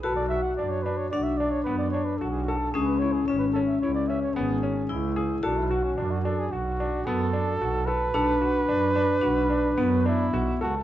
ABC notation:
X:1
M:5/4
L:1/16
Q:1/4=111
K:Bdor
V:1 name="Flugelhorn"
B d e f d c B c d e d c B d c B A G F A | G B c G c B A e c d e c G6 z2 | D E F C D F A G F4 A6 B2- | B12- B2 E4 F2 |]
V:2 name="Grand piano"
A2 F2 D2 D2 F2 D2 B,2 D2 F2 A2 | G2 E2 C2 C2 E2 C2 B,2 C2 E2 G2 | A2 F2 D2 D2 F2 D2 B,2 D2 F2 A2 | A2 F2 D2 D2 F2 D2 B,2 D2 F2 A2 |]
V:3 name="Vibraphone"
F8 D12 | C4 C12 E4 | F16- F4 | D8 D4 B,6 z2 |]
V:4 name="Double bass" clef=bass
B,,,4 F,,4 B,,,4 F,,4 B,,,4 | C,,4 G,,,4 C,,4 G,,,4 C,,4 | B,,,4 F,,4 B,,,4 F,,4 B,,,4 | B,,,4 F,,4 B,,,4 F,,4 B,,,2 C,,2 |]